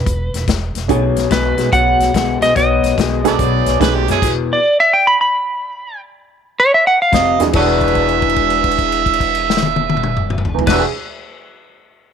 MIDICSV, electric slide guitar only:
0, 0, Header, 1, 2, 480
1, 0, Start_track
1, 0, Tempo, 415512
1, 1035, Time_signature, 4, 2, 24, 8
1, 14015, End_track
2, 0, Start_track
2, 0, Title_t, "Electric slide guitar"
2, 0, Program_c, 0, 29
2, 0, Note_on_c, 0, 71, 83
2, 522, Note_off_c, 0, 71, 0
2, 1524, Note_on_c, 0, 71, 84
2, 1998, Note_on_c, 0, 78, 102
2, 2015, Note_off_c, 0, 71, 0
2, 2746, Note_off_c, 0, 78, 0
2, 2801, Note_on_c, 0, 75, 88
2, 2956, Note_off_c, 0, 75, 0
2, 2970, Note_on_c, 0, 75, 83
2, 4358, Note_off_c, 0, 75, 0
2, 5231, Note_on_c, 0, 74, 93
2, 5525, Note_off_c, 0, 74, 0
2, 5546, Note_on_c, 0, 76, 96
2, 5687, Note_off_c, 0, 76, 0
2, 5700, Note_on_c, 0, 79, 86
2, 5844, Note_off_c, 0, 79, 0
2, 5859, Note_on_c, 0, 83, 89
2, 6004, Note_off_c, 0, 83, 0
2, 6019, Note_on_c, 0, 83, 97
2, 6939, Note_off_c, 0, 83, 0
2, 7620, Note_on_c, 0, 73, 92
2, 7763, Note_off_c, 0, 73, 0
2, 7790, Note_on_c, 0, 76, 87
2, 7928, Note_off_c, 0, 76, 0
2, 7938, Note_on_c, 0, 78, 84
2, 8082, Note_off_c, 0, 78, 0
2, 8108, Note_on_c, 0, 77, 97
2, 8552, Note_off_c, 0, 77, 0
2, 8735, Note_on_c, 0, 71, 80
2, 12214, Note_off_c, 0, 71, 0
2, 12330, Note_on_c, 0, 71, 84
2, 12495, Note_off_c, 0, 71, 0
2, 14015, End_track
0, 0, End_of_file